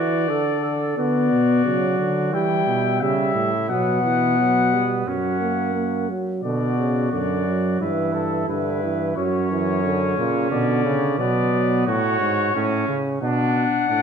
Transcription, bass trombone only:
0.97 1.29 D3 medium
1.31 1.64 B2 medium
1.65 1.98 C#3 medium
1.99 2.34 D3 medium
2.32 2.66 E3 medium
2.67 3.03 B2 medium
3.02 3.34 C#3 medium
3.35 3.71 A2 medium
3.69 5.06 B2 medium
5.06 6.07 F#2 medium
6.44 7.09 B2 medium
7.13 7.80 F#2 medium
7.81 8.48 G2 medium
8.49 9.15 G2 medium
9.17 10.16 F#2 medium
10.18 10.51 A#2 medium
10.51 10.84 B2 medium
10.85 11.18 C#3 medium
11.19 11.85 B2 medium
11.87 12.20 A2 medium
12.20 12.54 G#2 medium
12.55 12.88 A2 medium
12.88 13.21 C#3 medium
13.22 13.65 B2 medium
13.90 14.02 A2 medium

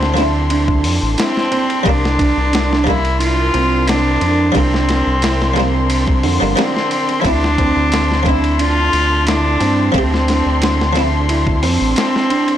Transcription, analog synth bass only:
0.00 0.86 D2 medium
0.85 1.00 F2 medium
1.03 1.16 A1 medium
1.86 2.34 C2 loud
2.37 3.51 C2 medium
3.54 4.18 C2 medium
4.22 4.51 F2 medium
4.55 5.03 C2 loud
5.07 6.25 C2 medium
6.24 6.39 F2 loud
6.42 6.55 G1 medium
7.25 7.73 D2 loud
7.76 8.90 D2 medium
8.93 9.58 D2 medium
9.61 9.90 G2 medium
9.94 10.42 D2 loud
10.46 11.65 D2 medium
11.63 11.79 F2 loud
11.81 11.95 A1 medium

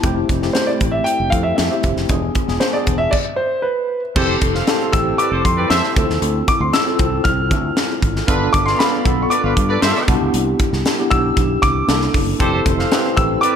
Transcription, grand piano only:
0.53 0.68 C5 medium
0.67 0.94 D5 medium
0.92 1.05 E5 medium
1.04 1.32 G5 loud
1.30 1.45 F5 medium
1.43 1.54 E5 medium
1.56 1.93 E5 medium
2.60 2.65 C5 medium
2.73 3.00 D5 medium
2.98 3.12 E5 medium
3.11 3.17 D5 medium
3.36 3.64 C5 medium
3.62 3.99 B4 medium
4.93 5.17 E6 medium
5.18 5.43 D6 medium
5.45 5.69 C6 medium
5.70 6.06 E6 medium
6.48 6.61 D6 medium
6.61 6.74 C6 medium
6.73 7.21 E6 medium
7.24 7.72 F6 medium
8.53 8.67 D6 loud
8.66 8.78 C6 loud
8.79 9.25 B5 medium
9.22 9.30 C#6 medium
9.30 9.78 D6 medium
11.11 11.64 E6 loud
11.62 12.10 D6 loud
13.17 13.41 E6 medium
13.41 13.56 D6 loud

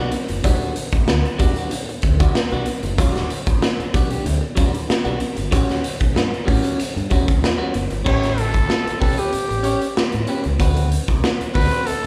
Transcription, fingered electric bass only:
0.30 0.40 F#1 medium
0.45 0.57 E1 loud
0.93 1.04 G1 medium
1.08 1.20 D2 loud
1.40 1.52 E2 loud
2.03 2.26 D2 medium
2.52 2.63 B1 medium
2.83 2.99 F#1 loud
2.98 3.21 E1 loud
3.47 3.58 G1 medium
3.79 muted fingered electric bass stroke medium
3.94 4.17 B1 medium
4.26 4.38 D2 loud
4.58 4.70 E2 loud
4.89 muted fingered electric bass stroke soft
5.06 5.16 B1 medium
5.37 5.48 G1 medium
5.53 5.65 A1 loud
6.01 6.12 B1 medium
6.15 6.28 G2 loud
6.48 6.60 A2 loud
6.96 7.07 G2 medium
7.11 7.23 E2 loud
7.29 7.39 C#2 medium
7.43 7.55 E2 medium
7.75 7.87 F#1 medium
7.92 8.03 G1 medium
8.06 8.55 A1 loud
8.55 8.66 G1 medium
8.87 muted fingered electric bass stroke medium
9.02 9.14 B1 medium
9.34 muted fingered electric bass stroke soft
9.51 9.73 A1 medium
10.14 10.25 A2 medium
10.46 10.56 C#2 loud
10.60 10.95 D2 loud
11.09 11.19 C2 medium
11.41 muted fingered electric bass stroke soft
11.56 11.68 D2 medium
11.88 muted fingered electric bass stroke soft

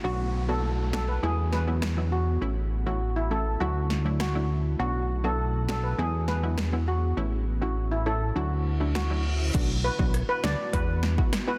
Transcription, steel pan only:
0.04 0.17 F#4 medium
0.49 0.61 A4 medium
0.93 1.06 A4 medium
1.08 1.21 B4 medium
1.23 1.35 G#4 medium
1.53 1.65 B4 medium
2.12 2.25 F#4 medium
2.87 2.99 F#4 medium
3.16 3.29 E4 medium
3.31 3.43 A4 medium
3.60 4.02 F#4 medium
4.20 4.62 F#4 medium
4.80 4.92 F#4 loud
5.24 5.36 A4 medium
5.69 5.81 A4 medium
5.84 5.96 B4 medium
5.99 6.11 G#4 medium
6.28 6.41 B4 medium
6.88 7.00 F#4 medium
7.62 7.74 F#4 medium
7.92 8.04 E4 medium
8.06 8.19 A4 medium
8.36 8.78 F#4 medium
8.95 9.37 F#4 medium
9.84 9.97 B4 medium
10.29 10.41 B4 medium
10.44 10.56 D5 medium
10.73 11.15 B4 loud
11.48 11.58 B4 medium

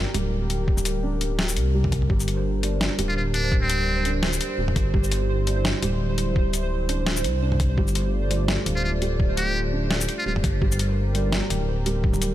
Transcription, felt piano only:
0.00 2.12 G2 medium
0.00 0.14 G3 loud
0.14 0.25 G3 loud
1.03 1.73 D4 medium
1.74 1.91 G3 medium
2.10 2.27 G3 loud
2.63 2.80 G2 medium
2.99 3.09 G3 loud
4.05 4.57 D4 medium
4.59 4.75 G3 medium
4.94 5.11 G3 loud
5.47 5.64 G2 medium
5.83 5.93 G3 loud
6.89 7.41 D4 medium
7.42 7.58 D4 medium
7.78 7.95 G3 loud
8.31 8.48 G2 medium
9.02 9.13 G3 medium
9.73 10.25 D4 medium
10.26 10.43 G3 medium
10.62 10.79 G3 loud
11.15 11.32 G2 medium
11.86 11.97 G3 loud

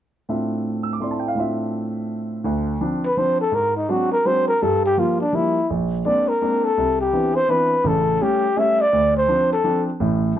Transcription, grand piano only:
0.29 1.33 A2 soft
0.29 0.99 A3 soft
0.29 1.00 C4 soft
0.29 1.36 D4 soft
0.29 1.37 F4 soft
0.29 1.37 E5 soft
0.83 0.94 E6 soft
0.93 1.04 D6 soft
1.00 1.35 A3 soft
1.00 1.36 C4 soft
1.00 1.37 E4 soft
1.00 1.38 D5 soft
1.00 1.16 C6 soft
1.11 1.25 A5 soft
1.20 1.30 G5 soft
1.28 1.40 F5 medium
1.35 2.43 A2 soft
1.35 2.44 A3 soft
1.35 2.45 C4 soft
1.35 2.45 D4 soft
1.39 2.46 F4 soft
1.39 2.46 E5 soft
2.44 2.75 D2 medium
2.44 2.75 D3 medium
2.81 3.04 F3 soft
2.81 3.05 C4 soft
2.81 3.05 D4 soft
3.17 3.40 F3 soft
3.17 3.41 C4 soft
3.17 3.41 D4 soft
3.52 3.83 G#2 medium
3.89 4.12 F#3 soft
3.89 4.12 G#3 soft
3.89 4.13 C4 soft
3.89 4.13 D4 medium
4.25 4.49 F#3 soft
4.25 4.48 G#3 soft
4.25 4.49 C4 soft
4.25 4.49 D4 soft
4.62 4.92 G2 medium
4.62 4.92 G3 medium
4.97 5.21 F3 soft
4.97 5.21 G3 soft
4.97 5.21 A#3 medium
5.33 5.56 F3 soft
5.33 5.57 G3 soft
5.33 5.57 A#3 soft
5.70 6.00 A#1 medium
6.05 6.29 G#3 soft
6.05 6.29 A#3 soft
6.05 6.29 C4 soft
6.05 6.29 D4 medium
6.42 6.65 G#3 soft
6.42 6.65 A#3 soft
6.42 6.65 C4 soft
6.42 6.65 D4 soft
6.77 7.08 C2 medium
7.13 7.37 E3 soft
7.13 7.36 B3 soft
7.13 7.37 C4 soft
7.13 7.37 D4 soft
7.48 7.72 E3 soft
7.48 7.72 B3 soft
7.48 7.73 C4 soft
7.48 7.73 D4 soft
7.84 8.15 A1 medium
7.84 8.15 C#3 medium
8.21 8.45 G3 soft
8.21 8.45 A3 soft
8.21 8.45 C#4 medium
8.56 8.80 G3 soft
8.56 8.80 A3 soft
8.56 8.81 C#4 medium
8.93 9.23 D2 medium
9.28 9.52 F3 soft
9.28 9.52 C4 soft
9.28 9.52 D4 medium
9.64 9.88 F3 soft
9.64 9.88 C4 soft
9.64 9.88 D4 medium
10.00 10.31 A1 medium
10.00 10.31 A2 medium

